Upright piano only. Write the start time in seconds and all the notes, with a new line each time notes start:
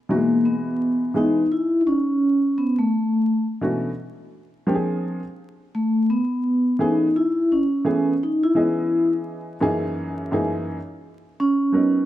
0.09 B2 E3 F#3 D#4 F#4
0.16 G#3
1.14 E3 G#3 B3 D#4 G#4
3.61 B2 E3 A3 C#4 D4 F#4
4.67 F3 A#3 C4 D4 G4
4.75 G#4
6.79 E3 A3 B3 C#4 G#4
7.85 E3 A3 B3 C#4 G#4
8.55 E3 B3 C#4 G#4 D#5
9.61 F#2 E3 A#3 C#4 D#4 G#4
10.31 F#2 E3 A#3 C#4 D#4 G#4
11.72 F#3 B3 C#4 D#4 A#4